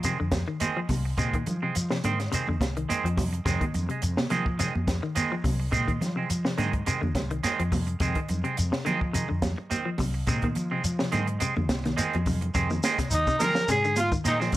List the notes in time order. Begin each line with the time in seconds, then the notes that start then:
Already playing: F3
0.03 C3 D#3 G#3 C4, closed hi-hat, shekere
0.19 F2 D3, muted clean electric guitar stroke
0.32 kick, snare, closed hi-hat, high conga, shekere
0.48 D#3, muted clean electric guitar stroke
0.60 D#3 G#3 C4, closed hi-hat, high conga, shekere
0.77 F3
0.89 C2 C3, muted clean electric guitar stroke, kick, open hi-hat, high conga, low conga, shekere
1.05 muted clean electric guitar stroke
1.17 A#2 C3 D#3 G#3 C4, kick, closed hi-hat, shekere
1.33 D#3, kick, closed hi-hat
1.46 F3, muted clean electric guitar stroke, closed hi-hat, low conga, shekere
1.62 C3 G#3 C4
1.75 F3, muted clean electric guitar stroke, closed hi-hat, shekere
1.90 C3, muted clean electric guitar stroke, snare
2.04 G#2 D3 D#3 C4, closed hi-hat, high conga, low conga, shekere
2.20 muted clean electric guitar stroke, snare, closed hi-hat
2.32 C3 D#3 G#3 C4, closed hi-hat, shekere
2.47 F2 D3, muted clean electric guitar stroke, high conga
2.61 C2, kick, snare, closed hi-hat, high conga, shekere
2.77 D#3, muted clean electric guitar stroke, closed hi-hat
2.89 D#3 G#3 C4, muted fretless electric bass stroke, closed hi-hat, high conga, shekere
3.04 F2 F3, closed hi-hat
3.17 C3, muted clean electric guitar stroke, kick, open hi-hat, high conga, low conga, shekere
3.33 muted clean electric guitar stroke, closed hi-hat
3.45 F2 C3 D#3 G#3 C4, kick, snare, closed hi-hat, shekere
3.61 D#3, kick, closed hi-hat, high conga
3.74 F2, muted clean electric guitar stroke, closed hi-hat, low conga, shekere
3.89 C3 G#3, closed hi-hat
4.02 F2, muted clean electric guitar stroke, closed hi-hat, shekere
4.17 C3, muted clean electric guitar stroke, snare, high conga
4.30 C3 D#3 F3 G#3 C4, closed hi-hat, high conga, low conga, shekere
4.46 muted clean electric guitar stroke, kick
4.59 C3 D#3 G#3 C4, snare, closed hi-hat, shekere
4.75 F2, muted clean electric guitar stroke, high conga
4.87 kick, snare, closed hi-hat, high conga, shekere
5.02 D#3, muted clean electric guitar stroke
5.15 D#3 G#3 C4, closed hi-hat, high conga, shekere
5.32 F3
5.44 C2 C3, muted clean electric guitar stroke, kick, open hi-hat, high conga, low conga, shekere
5.60 muted clean electric guitar stroke
5.71 A#2 C3 D#3 G#3 C4, kick, closed hi-hat, shekere
5.88 D#3, kick, closed hi-hat
6.01 F3, muted clean electric guitar stroke, snare, closed hi-hat, low conga, shekere
6.16 C3 G#3 C4
6.30 F3, muted clean electric guitar stroke, closed hi-hat, shekere
6.45 C3, muted clean electric guitar stroke, snare
6.58 G#2 D3 D#3 G#3 C4, closed hi-hat, high conga, low conga, shekere
6.73 muted clean electric guitar stroke, kick, closed hi-hat
6.86 C3 D#3 G#3 C4, closed hi-hat, shekere
7.02 F2 D3, muted clean electric guitar stroke, high conga
7.15 C2, kick, snare, closed hi-hat, high conga, low conga, shekere
7.31 D#3, muted clean electric guitar stroke, closed hi-hat
7.43 D#3 G#3 C4, snare, closed hi-hat, high conga, shekere
7.59 F2 F3, closed hi-hat
7.72 C3, muted clean electric guitar stroke, kick, open hi-hat, high conga, low conga, shekere
7.87 muted clean electric guitar stroke, closed hi-hat
8.00 F2 C3 D#3 G#3 C4, kick, closed hi-hat, shekere
8.15 D#3, kick, closed hi-hat
8.29 F2, muted clean electric guitar stroke, closed hi-hat, low conga, shekere
8.44 C3 G#3 C4, closed hi-hat
8.57 F2, muted clean electric guitar stroke, closed hi-hat, shekere
8.72 C3, muted clean electric guitar stroke, snare
8.85 D3 D#3 F3 G#3 C4, closed hi-hat, high conga, low conga, shekere
9.01 muted clean electric guitar stroke, kick
9.13 C3 D#3 G#3, muted clean electric guitar stroke, closed hi-hat, shekere
9.29 F2 D3, muted clean electric guitar stroke
9.42 kick, snare, closed hi-hat, high conga, low conga, shekere
9.58 muted clean electric guitar stroke
9.70 D#3 C4, closed hi-hat, high conga, shekere
9.85 F3
9.98 C2 C3, muted clean electric guitar stroke, kick, open hi-hat, high conga, low conga, shekere
10.14 muted clean electric guitar stroke
10.27 A#2 C3 D#3 G#3 C4, kick, closed hi-hat, shekere
10.42 D#3, kick, closed hi-hat, high conga
10.55 F3, muted clean electric guitar stroke, closed hi-hat, shekere
10.71 C3 G#3 C4
10.84 F3, muted clean electric guitar stroke, closed hi-hat, shekere
10.99 C3, muted clean electric guitar stroke, snare
11.12 G#2 D3 D#3 G#3 C4, closed hi-hat, high conga, low conga, shekere
11.27 muted clean electric guitar stroke, closed hi-hat
11.39 C3 G#3 C4, muted clean electric guitar stroke, closed hi-hat, shekere
11.56 F2 D3, muted clean electric guitar stroke, high conga
11.69 C2, kick, snare, closed hi-hat, high conga, shekere
11.84 D#3, muted clean electric guitar stroke, snare, closed hi-hat, high conga
11.97 D#3 G#3 C4, muted fretless electric bass stroke, closed hi-hat, high conga, shekere
12.13 F2 F3, closed hi-hat, high conga
12.26 C3, muted clean electric guitar stroke, kick, open hi-hat, low conga, shekere
12.41 muted clean electric guitar stroke, closed hi-hat, low conga
12.54 F2 C3 D#3 G#3 C4, kick, closed hi-hat, shekere
12.70 D#3, muted clean electric guitar stroke, high conga, shekere
12.83 D#3 G#3 C4, snare, closed hi-hat, high conga, shekere
12.98 C3, muted clean electric guitar stroke, kick, snare, closed hi-hat, shekere
13.10 D#2 D#4, closed hi-hat, shekere
13.27 C3, muted clean electric guitar stroke, kick, shekere
13.39 D3 D#3 F3 G#3 C4 A#4, closed hi-hat, high conga, low conga, shekere
13.44 A#4
13.55 muted clean electric guitar stroke, snare, shekere
13.68 G#2 C3 G#4, muted clean electric guitar stroke, snare, closed hi-hat, shekere
13.83 D3, muted clean electric guitar stroke, shekere
13.96 F4, muted clean electric guitar stroke, closed hi-hat, high conga, shekere
14.00 F4
14.12 D#3, kick, shekere
14.24 A#2 D#3 G#3 C4 D#4, closed hi-hat, high conga, shekere
14.40 D#3 F3 G#3 C4, snare, shekere
14.52 muted clean electric guitar stroke, kick, open hi-hat, low conga